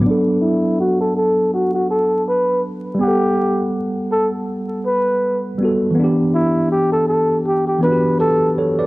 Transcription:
Already playing: F#3
0.01 B3
0.06 D4
0.11 A4
0.42 E4
0.81 F#4
1.01 A4
1.17 A4
1.54 F#4
1.74 F#4
1.91 A4
2.29 B4
2.95 G3
2.99 B3 G4
3.04 F#5
3.08 A4
4.12 A4
4.86 B4
5.58 G3 B3
5.63 F#4 A4
5.90 E3
5.95 B3
6.00 D4
6.04 G4
6.34 E4
6.72 G4
6.92 A4
7.09 A4
7.47 G4
7.67 G4
7.79 E3 B3
7.83 D4 F#4 B4
7.92 G4
8.19 G4 A4 B4
8.58 A4 C#5
8.79 B4 D5

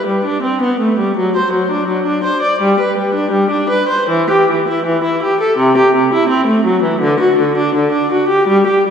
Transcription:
0.07 G3
0.25 D4
0.42 C4
0.62 B3
0.80 A3
0.98 G3
1.17 F#3
1.36 C5
1.53 F#3
1.71 D4
1.88 F#3
2.06 D4
2.24 C5
2.42 D5
2.61 G3
2.80 B4
2.98 G3
3.14 D4
3.31 G3
3.50 D4
3.69 B4
3.89 C5
4.09 E3
4.30 G4
4.50 E3
4.68 E4
4.86 E3
5.04 E4
5.23 G4
5.40 A4
5.58 C3
5.77 G4
5.96 C3
6.14 E4
6.29 C4
6.47 A3
6.65 F#3
6.82 E3
7.00 D3
7.20 F#4
7.39 D3
7.57 D4
7.75 D3
7.92 D4
8.12 F#4
8.28 G4
8.48 G3
8.67 G4
8.87 G3

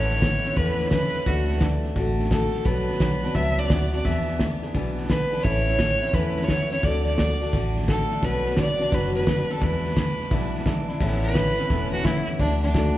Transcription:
Already playing: A1 A2 E3 B3 C#4 E4 C#5
0.10 snare
0.21 E3 B3 C#4 E4, kick, snare, hi-hat pedal
0.44 B3 C#4 E4, snare
0.56 E2 A2 E3 B3 C#4 E4 B4, kick, snare
0.80 snare
0.85 snare
0.91 E3 B3 C#4 E4 B4, kick, snare, hi-hat pedal
1.14 snare
1.26 D2 D3 A3 D4 F#4, kick, snare
1.49 snare
1.55 snare
1.60 D3 A3 D4 F#4, kick, snare, hi-hat pedal
1.84 snare
1.96 A1 D3 A3 D4 F#4, kick, snare
2.19 snare
2.25 snare
2.30 D3 A3 D4 F#4 A4, kick, snare, hi-hat pedal
2.54 snare
2.65 B1 B2 F#3 B3 D4 F#4 B4, kick, snare
2.88 snare
2.94 snare
3.00 B1 F#3 B3 D4 F#4, kick, snare, hi-hat pedal
3.23 B3 D4 F#4, snare
3.34 C#2 B2 F#3 B3 D4 F#4 E5, kick, snare
3.58 D5, snare
3.64 snare
3.70 D2 F#3 B3 D4 F#4, kick, snare, hi-hat pedal
3.93 B3 D4 F#4 D5, snare
4.05 E2 B2 E3 B3 D4 G#4 E5, kick, snare
4.28 snare
4.39 E3 B3 D4 G#4, kick, snare, hi-hat pedal
4.62 E3 B3 D4 G#4, snare
4.74 B1 E2 B2 E3 B3 D4 G#4, kick, snare
4.98 snare
5.04 snare
5.09 E3 B3 D4 G#4 B4, kick, snare, hi-hat pedal
5.32 E3 B3 D4 G#4, snare
5.43 A1 A2 E3 B3 C#4 E4 C#5, kick, snare
5.67 snare
5.79 E3 B3 C#4 E4, kick, snare, hi-hat pedal
6.02 B3 C#4 E4, snare
6.13 E2 A2 E3 B3 C#4 E4 B4, kick, snare
6.37 snare
6.42 C#5, snare
6.48 E3 B3 C#4 E4, kick, snare, hi-hat pedal
6.71 B3 C#4 E4 C#5, snare
6.83 D2 D3 A3 D4 F#4 D5, kick, snare
7.06 D5, snare
7.17 D3 A3 D4 F#4, kick, snare, hi-hat pedal
7.41 A3 D4 F#4, snare
7.53 A1 D3 A3 D4 F#4, kick, snare
7.77 snare
7.82 snare
7.86 D3 A3 D4 F#4 A4, kick, snare, hi-hat pedal
8.10 A3 D4 F#4, snare
8.22 B1 B2 F#3 B3 D4 F#4 B4, kick, snare
8.46 snare
8.52 snare
8.57 F#3 B3 D4 F#4 D5, kick, snare, hi-hat pedal
8.79 B3 D4 F#4, snare
8.91 F#1 B2 F#3 B3 D4 F#4 B4, kick, snare
9.15 B4, snare
9.21 snare
9.26 F#3 B3 D4 F#4, kick, snare, hi-hat pedal
9.49 B3 D4 F#4 A4, snare
9.61 E2 B2 E3 G#3 D4 E4 B4, kick, snare
9.85 snare
9.91 snare
9.96 E3 G#3 D4 E4, kick, snare, hi-hat pedal
10.20 snare
10.30 B1 E2 B2 E3 G#3 D4 E4, kick, snare
10.55 snare
10.60 snare
10.65 E3 G#3 D4 E4, kick, snare, hi-hat pedal
10.89 E3 G#3 D4 E4, snare
11.00 A1 A2 E3 B3 C#4 E4, kick, snare, crash
11.23 B4, snare
11.30 snare
11.35 E3 B3 C#4 E4, kick, snare, hi-hat pedal
11.58 B3 C#4 E4, snare
11.70 E1 A2 E3 B3 C#4 E4, kick, snare
11.93 F#4, snare
12.00 snare
12.04 E3 B3 C#4 E4, kick, snare, hi-hat pedal
12.27 snare
12.39 D2 D3 A3 D4 F#4, kick, snare
12.62 D4, snare
12.69 snare
12.74 D3 A3 D4 F#4, kick, snare, hi-hat pedal

